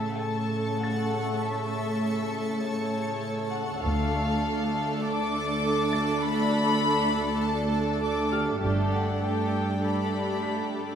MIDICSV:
0, 0, Header, 1, 8, 480
1, 0, Start_track
1, 0, Tempo, 600000
1, 1143, Time_signature, 4, 2, 24, 8
1, 8761, End_track
2, 0, Start_track
2, 0, Title_t, "Grand piano"
2, 0, Program_c, 0, 0
2, 0, Control_c, 0, 64, 127
2, 668, Note_on_c, 0, 93, 32
2, 2073, Note_off_c, 0, 93, 0
2, 3080, Control_c, 0, 64, 0
2, 3201, Control_c, 0, 64, 127
2, 4743, Note_on_c, 0, 93, 38
2, 6151, Note_off_c, 0, 93, 0
2, 6658, Note_on_c, 0, 89, 42
2, 6659, Note_on_c, 0, 67, 27
2, 6919, Control_c, 0, 64, 0
2, 7047, Control_c, 0, 64, 127
2, 8069, Note_off_c, 0, 67, 0
2, 8069, Note_off_c, 0, 89, 0
2, 8341, Note_on_c, 0, 95, 21
2, 8761, Note_off_c, 0, 95, 0
2, 8761, End_track
3, 0, Start_track
3, 0, Title_t, "Violin section"
3, 0, Program_c, 1, 48
3, 0, Note_on_c, 1, 76, 42
3, 179, Note_on_c, 1, 81, 55
3, 182, Note_off_c, 1, 76, 0
3, 661, Note_off_c, 1, 81, 0
3, 661, Note_on_c, 1, 78, 59
3, 1132, Note_off_c, 1, 78, 0
3, 1137, Note_on_c, 1, 76, 54
3, 2100, Note_off_c, 1, 76, 0
3, 2104, Note_on_c, 1, 73, 58
3, 2824, Note_off_c, 1, 73, 0
3, 2824, Note_on_c, 1, 78, 53
3, 3059, Note_on_c, 1, 77, 63
3, 3064, Note_off_c, 1, 78, 0
3, 4021, Note_off_c, 1, 77, 0
3, 4024, Note_on_c, 1, 86, 71
3, 4982, Note_on_c, 1, 83, 93
3, 4984, Note_off_c, 1, 86, 0
3, 5943, Note_off_c, 1, 83, 0
3, 5943, Note_on_c, 1, 81, 62
3, 6423, Note_off_c, 1, 81, 0
3, 6423, Note_on_c, 1, 86, 58
3, 6658, Note_off_c, 1, 86, 0
3, 7148, Note_on_c, 1, 78, 45
3, 7369, Note_off_c, 1, 78, 0
3, 7386, Note_on_c, 1, 79, 45
3, 7864, Note_off_c, 1, 79, 0
3, 7872, Note_on_c, 1, 83, 51
3, 8761, Note_off_c, 1, 83, 0
3, 8761, End_track
4, 0, Start_track
4, 0, Title_t, "Ambient pad"
4, 0, Program_c, 2, 92
4, 0, Note_on_c, 2, 69, 44
4, 0, Note_on_c, 2, 81, 41
4, 0, Note_on_c, 2, 85, 43
4, 3029, Note_off_c, 2, 85, 0
4, 3030, Note_off_c, 2, 69, 0
4, 3030, Note_off_c, 2, 81, 0
4, 3066, Note_on_c, 2, 74, 49
4, 3069, Note_on_c, 2, 81, 47
4, 3073, Note_on_c, 2, 69, 46
4, 6874, Note_off_c, 2, 81, 0
4, 6876, Note_off_c, 2, 69, 0
4, 6905, Note_off_c, 2, 74, 0
4, 6911, Note_on_c, 2, 67, 47
4, 6913, Note_on_c, 2, 69, 40
4, 6915, Note_on_c, 2, 74, 43
4, 8761, Note_off_c, 2, 67, 0
4, 8761, Note_off_c, 2, 69, 0
4, 8761, Note_off_c, 2, 74, 0
4, 8761, End_track
5, 0, Start_track
5, 0, Title_t, "Violin section"
5, 0, Program_c, 3, 48
5, 0, Note_on_c, 3, 69, 32
5, 3036, Note_off_c, 3, 69, 0
5, 3067, Note_on_c, 3, 69, 39
5, 3069, Note_off_c, 3, 69, 0
5, 3069, Note_on_c, 3, 69, 52
5, 6874, Note_off_c, 3, 69, 0
5, 6906, Note_on_c, 3, 67, 39
5, 6910, Note_on_c, 3, 69, 41
5, 7353, Note_off_c, 3, 67, 0
5, 7355, Note_off_c, 3, 69, 0
5, 7386, Note_on_c, 3, 69, 39
5, 7389, Note_on_c, 3, 67, 35
5, 7851, Note_off_c, 3, 67, 0
5, 7855, Note_off_c, 3, 69, 0
5, 7861, Note_on_c, 3, 67, 36
5, 7865, Note_on_c, 3, 69, 37
5, 8761, Note_off_c, 3, 67, 0
5, 8761, Note_off_c, 3, 69, 0
5, 8761, End_track
6, 0, Start_track
6, 0, Title_t, "Viola section"
6, 0, Program_c, 4, 48
6, 0, Note_on_c, 4, 49, 37
6, 0, Note_on_c, 4, 57, 37
6, 3031, Note_off_c, 4, 49, 0
6, 3031, Note_off_c, 4, 57, 0
6, 3066, Note_on_c, 4, 62, 50
6, 3068, Note_on_c, 4, 57, 49
6, 6873, Note_off_c, 4, 62, 0
6, 6874, Note_off_c, 4, 57, 0
6, 6905, Note_on_c, 4, 57, 44
6, 6907, Note_on_c, 4, 62, 42
6, 7352, Note_off_c, 4, 57, 0
6, 7353, Note_off_c, 4, 62, 0
6, 7389, Note_on_c, 4, 57, 36
6, 7392, Note_on_c, 4, 62, 37
6, 7856, Note_off_c, 4, 57, 0
6, 7858, Note_off_c, 4, 62, 0
6, 7870, Note_on_c, 4, 57, 35
6, 7870, Note_on_c, 4, 62, 37
6, 8761, Note_off_c, 4, 57, 0
6, 8761, Note_off_c, 4, 62, 0
6, 8761, End_track
7, 0, Start_track
7, 0, Title_t, "Cello section"
7, 0, Program_c, 5, 48
7, 0, Note_on_c, 5, 45, 36
7, 3061, Note_on_c, 5, 38, 44
7, 3062, Note_off_c, 5, 45, 0
7, 6870, Note_off_c, 5, 38, 0
7, 6898, Note_on_c, 5, 43, 42
7, 8761, Note_off_c, 5, 43, 0
7, 8761, End_track
8, 0, Start_track
8, 0, Title_t, "Double bass section"
8, 0, Program_c, 6, 48
8, 3066, Note_on_c, 6, 38, 42
8, 3513, Note_off_c, 6, 38, 0
8, 6907, Note_on_c, 6, 31, 46
8, 7353, Note_off_c, 6, 31, 0
8, 8761, End_track
0, 0, End_of_file